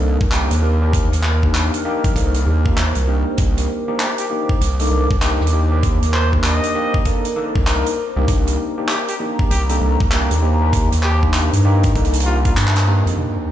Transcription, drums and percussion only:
0.21 kick
0.32 clap, closed hi-hat
0.51 cross-stick, closed hi-hat
0.93 kick, closed hi-hat
1.12 cross-stick, closed hi-hat
1.23 clap
1.43 kick
1.55 clap, closed hi-hat
1.74 closed hi-hat
2.04 kick, closed hi-hat
2.16 kick, closed hi-hat
2.34 cross-stick, closed hi-hat
2.66 kick
2.77 clap, closed hi-hat
2.95 closed hi-hat
3.38 kick, closed hi-hat
3.57 cross-stick, closed hi-hat
4.00 clap, closed hi-hat
4.18 closed hi-hat
4.49 kick
4.61 closed hi-hat
4.80 closed hi-hat
4.81 closed hi-hat
4.85 closed hi-hat
4.87 closed hi-hat
4.89 closed hi-hat
5.11 kick
5.21 clap, closed hi-hat
5.41 cross-stick
5.47 closed hi-hat
5.83 kick, closed hi-hat
6.03 cross-stick, closed hi-hat
6.14 clap
6.33 kick
6.44 clap, closed hi-hat
6.63 closed hi-hat
6.94 kick
7.05 kick, closed hi-hat
7.25 closed hi-hat
7.56 kick
7.67 clap, closed hi-hat
7.86 closed hi-hat
8.28 kick, closed hi-hat
8.47 cross-stick, closed hi-hat
8.89 clap, closed hi-hat
9.08 closed hi-hat
9.39 kick
9.51 closed hi-hat
9.69 closed hi-hat
10.00 kick
10.11 clap, closed hi-hat
10.31 cross-stick, closed hi-hat
10.73 kick, closed hi-hat
10.92 cross-stick, closed hi-hat
11.03 clap
11.23 kick
11.34 clap, closed hi-hat
11.53 closed hi-hat
11.83 kick, closed hi-hat
11.95 kick, closed hi-hat
12.05 closed hi-hat
12.13 closed hi-hat
12.20 closed hi-hat
12.26 cross-stick
12.45 kick, closed hi-hat
12.57 clap, closed hi-hat
12.67 clap
12.76 clap, closed hi-hat
13.07 closed hi-hat
13.18 crash

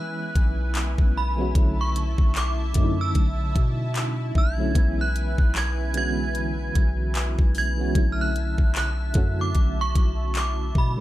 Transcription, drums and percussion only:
0.35 kick, closed hi-hat
0.75 clap, closed hi-hat
0.98 kick
1.55 kick, closed hi-hat
1.96 closed hi-hat
2.18 kick
2.35 clap, closed hi-hat
2.74 kick, closed hi-hat
3.15 kick, closed hi-hat
3.56 kick, closed hi-hat
3.96 clap, closed hi-hat
4.35 kick
4.75 kick, closed hi-hat
5.16 closed hi-hat
5.38 kick
5.55 clap, closed hi-hat
5.94 closed hi-hat
6.35 closed hi-hat
6.75 kick, closed hi-hat
7.15 clap, closed hi-hat
7.39 kick
7.55 open hi-hat
7.95 kick, closed hi-hat
8.36 closed hi-hat
8.58 kick
8.75 clap, closed hi-hat
9.14 kick, closed hi-hat
9.55 kick, closed hi-hat
9.95 kick, closed hi-hat
10.35 clap, closed hi-hat
10.75 kick

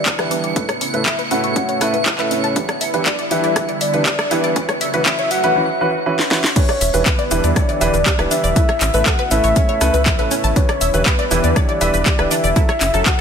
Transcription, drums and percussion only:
0.06 kick, clap, closed hi-hat
0.19 cross-stick, closed hi-hat
0.31 open hi-hat
0.44 closed hi-hat
0.56 kick, closed hi-hat
0.69 cross-stick, closed hi-hat
0.81 open hi-hat
0.94 closed hi-hat
1.06 kick, clap, closed hi-hat
1.19 closed hi-hat
1.31 open hi-hat
1.44 closed hi-hat
1.56 kick, closed hi-hat
1.69 closed hi-hat
1.81 cross-stick, open hi-hat
1.94 closed hi-hat
2.06 kick, clap, closed hi-hat
2.19 clap, closed hi-hat
2.31 open hi-hat
2.44 closed hi-hat
2.56 kick, closed hi-hat
2.69 cross-stick, closed hi-hat
2.81 open hi-hat
2.94 closed hi-hat
3.06 kick, clap, closed hi-hat
3.19 closed hi-hat
3.31 open hi-hat
3.44 closed hi-hat
3.56 kick, cross-stick, closed hi-hat
3.69 closed hi-hat
3.81 open hi-hat
3.94 closed hi-hat
4.06 kick, clap, closed hi-hat
4.19 cross-stick, closed hi-hat
4.31 open hi-hat
4.44 closed hi-hat
4.56 kick, closed hi-hat
4.69 cross-stick, closed hi-hat
4.81 open hi-hat
4.94 closed hi-hat
5.06 kick, clap, closed hi-hat
5.19 closed hi-hat
5.31 open hi-hat
5.44 closed hi-hat
6.19 snare
6.31 snare
6.44 snare
6.56 kick, closed hi-hat, crash, shaker
6.69 cross-stick, closed hi-hat
6.81 open hi-hat, shaker
6.94 closed hi-hat, shaker
7.06 kick, clap, closed hi-hat, shaker
7.19 closed hi-hat
7.31 open hi-hat, shaker
7.44 closed hi-hat, shaker
7.56 kick, cross-stick, closed hi-hat, shaker
7.69 closed hi-hat
7.81 open hi-hat, shaker
7.94 closed hi-hat, shaker
8.06 kick, clap, closed hi-hat, shaker
8.19 cross-stick, closed hi-hat
8.31 open hi-hat, shaker
8.44 closed hi-hat, shaker
8.56 kick, closed hi-hat, shaker
8.69 cross-stick, closed hi-hat
8.81 clap, open hi-hat, shaker
8.94 closed hi-hat, shaker
9.06 kick, clap, closed hi-hat, shaker
9.19 closed hi-hat
9.31 open hi-hat, shaker
9.44 closed hi-hat, shaker
9.56 kick, closed hi-hat, shaker
9.69 closed hi-hat
9.81 cross-stick, open hi-hat, shaker
9.94 closed hi-hat, shaker
10.06 kick, clap, closed hi-hat, shaker
10.19 closed hi-hat
10.31 open hi-hat, shaker
10.44 closed hi-hat, shaker
10.56 kick, closed hi-hat, shaker
10.69 cross-stick, closed hi-hat
10.81 open hi-hat, shaker
10.94 closed hi-hat, shaker
11.06 kick, clap, closed hi-hat, shaker
11.19 closed hi-hat
11.31 open hi-hat, shaker
11.44 closed hi-hat, shaker
11.56 kick, cross-stick, closed hi-hat, shaker
11.69 closed hi-hat
11.81 open hi-hat, shaker
11.94 closed hi-hat, shaker
12.06 kick, clap, closed hi-hat, shaker
12.19 cross-stick, closed hi-hat
12.31 open hi-hat, shaker
12.44 closed hi-hat, shaker
12.56 kick, closed hi-hat, shaker
12.69 cross-stick, closed hi-hat
12.81 clap, open hi-hat, shaker
12.94 closed hi-hat, shaker
13.06 kick, clap, closed hi-hat, shaker

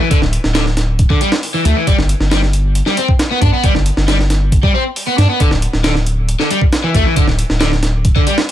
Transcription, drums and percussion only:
0.11 kick, closed hi-hat
0.22 snare
0.33 closed hi-hat
0.44 snare
0.55 snare, closed hi-hat
0.66 snare
0.77 snare, closed hi-hat
0.99 kick, closed hi-hat
1.10 kick
1.21 closed hi-hat
1.32 snare
1.43 open hi-hat
1.65 closed hi-hat
1.87 kick, closed hi-hat
1.98 snare
2.09 closed hi-hat
2.20 snare
2.31 snare, closed hi-hat
2.42 snare
2.53 closed hi-hat
2.75 closed hi-hat
2.86 snare
2.97 closed hi-hat
3.08 kick
3.19 snare, closed hi-hat
3.42 kick, closed hi-hat
3.64 kick, closed hi-hat
3.75 snare
3.86 closed hi-hat
3.97 snare
4.08 snare, closed hi-hat
4.19 snare
4.30 snare, closed hi-hat
4.52 kick, closed hi-hat
4.63 kick
4.96 open hi-hat
5.18 snare, closed hi-hat
5.40 kick, closed hi-hat
5.51 snare
5.62 closed hi-hat
5.73 snare
5.84 snare, closed hi-hat
5.95 snare
6.07 closed hi-hat
6.29 closed hi-hat
6.40 snare
6.51 closed hi-hat
6.61 kick
6.73 snare, closed hi-hat
6.94 kick, closed hi-hat
7.16 kick, closed hi-hat
7.27 snare
7.39 closed hi-hat
7.50 snare
7.61 snare, closed hi-hat
7.72 snare
7.83 snare, closed hi-hat
8.05 kick, closed hi-hat
8.16 kick
8.27 closed hi-hat
8.38 snare

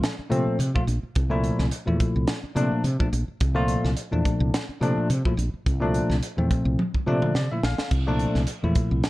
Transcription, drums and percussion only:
0.03 snare, closed hi-hat
0.32 closed hi-hat
0.60 closed hi-hat
0.76 kick
0.88 closed hi-hat
1.15 kick, closed hi-hat
1.44 closed hi-hat
1.59 snare
1.71 closed hi-hat
2.00 kick, closed hi-hat
2.27 snare, closed hi-hat
2.56 closed hi-hat
2.84 closed hi-hat
3.00 kick
3.13 closed hi-hat
3.40 kick, closed hi-hat
3.68 closed hi-hat
3.85 snare
3.97 closed hi-hat
4.25 kick, closed hi-hat
4.54 snare, closed hi-hat
4.83 closed hi-hat
5.10 closed hi-hat
5.25 kick
5.39 closed hi-hat
5.66 kick, closed hi-hat
5.94 closed hi-hat
6.10 snare
6.23 closed hi-hat
6.51 kick, closed hi-hat
6.79 high tom
6.94 kick
7.22 mid tom
7.35 snare
7.63 snare
7.78 snare
7.91 kick, closed hi-hat, crash
8.19 closed hi-hat
8.35 snare
8.47 closed hi-hat
8.75 kick, closed hi-hat
9.04 snare, closed hi-hat

